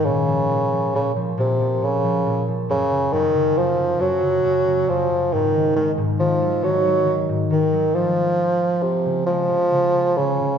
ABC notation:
X:1
M:6/8
L:1/16
Q:3/8=46
K:Db
V:1 name="Bassoon" clef=bass
D,4 D,2 C,2 D,2 z2 | D,2 E,2 F,2 G,4 F,2 | E,2 E,2 F,2 G,2 z2 E,2 | F,4 C,2 F,4 D,2 |]
V:2 name="Harp" clef=bass
B,, F, B,, F, B,, F, B,, F, B,, F, B,, F, | G,, D, G,, D, G,, D, G,, D, G,, D, G,, D, | A,, E, A, A,, E, G, E, G, E, A,, E, G, | F,4- F, D, A, D, D, D, D, D, |]